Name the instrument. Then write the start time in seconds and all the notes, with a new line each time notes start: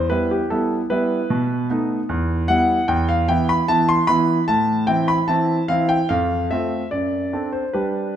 grand piano
0.10 G3 B3 E4 B4
0.31 G4
0.50 G3 B3 E4 A4
0.90 G3 B3 E4 B4
1.30 B2
1.70 A3 B3 D#4
2.09 E2
2.48 G3 B3 E4 F#5
2.88 E2 G5
3.09 F5
3.28 E3 B3 E4 G5
3.49 B5
3.68 E3 B3 E4 A5
3.89 C6
4.07 E3 B3 E4 B5
4.48 A2 A5
4.87 E3 C4 E4 G5
5.08 B5
5.28 E3 C4 E4 A5
5.68 E3 C4 E4 F5
5.89 G5
6.09 F2 F5
6.51 A3 C4 F4 E5
6.91 F#2 D5
7.33 C4 D4 A4
7.52 C5
7.73 G3 D4 G4 B4